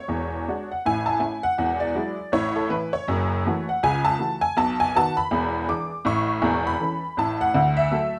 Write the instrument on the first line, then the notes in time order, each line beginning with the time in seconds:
honky-tonk piano
Already playing: C#5
0.08 E1 E2
0.48 G#3 D4 F#4
0.72 F#5
0.86 A1 A2 G#5
1.06 A5
1.19 A3 C#4 E4 G#5
1.43 F#5
1.58 E1 E2
1.80 D5
1.95 F#3 G#3 E4
2.32 A1 A2 C#5
2.56 A4
2.69 E3 A3 E4 B4
2.93 C#5
3.08 F#1 F#2
3.46 E3 A3 F#4
3.69 F#5
3.83 C#2 C#3 G#5
4.05 A5
4.19 E3 A3 F#4
4.41 G#5
4.57 B1 B2 A5
4.80 G#5
4.95 D#3 B3 F#4 A5
5.17 B5
5.31 E1 E2
5.68 E3 D4 G#4 D6
6.05 A1 A2 C#6
6.42 E1 E2
6.67 B5
6.80 E3 C#4 A4
7.17 A1 A2 A5
7.41 F#5
7.54 D2 D3
7.77 E5
7.91 F#3 A3 A4